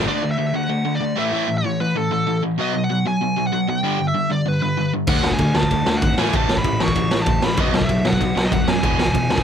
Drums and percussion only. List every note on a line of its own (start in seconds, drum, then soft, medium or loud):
5.07 kick loud
5.07 crash loud
5.23 snare loud
5.31 kick medium
5.38 kick loud
5.38 ride medium
5.55 snare loud
5.63 kick loud
5.71 kick medium
5.71 ride medium
5.86 snare loud
6.02 kick loud
6.02 ride medium
6.18 snare loud
6.33 kick loud
6.33 ride medium
6.49 snare loud
6.57 kick medium
6.64 kick loud
6.64 ride medium
6.80 snare loud
6.88 kick loud
6.95 kick loud
6.95 ride medium
7.11 snare loud
7.26 kick loud
7.26 ride medium
7.42 snare loud
7.57 kick loud
7.57 ride medium
7.74 snare loud
7.81 kick medium
7.89 kick loud
7.89 ride medium
8.05 snare loud
8.13 kick loud
8.21 kick loud
8.21 ride medium
8.37 snare loud
8.52 kick loud
8.52 ride medium
8.68 snare loud
8.83 kick loud
8.83 ride medium
8.99 snare loud
9.07 kick medium
9.15 kick loud
9.15 ride medium
9.30 snare loud
9.38 kick medium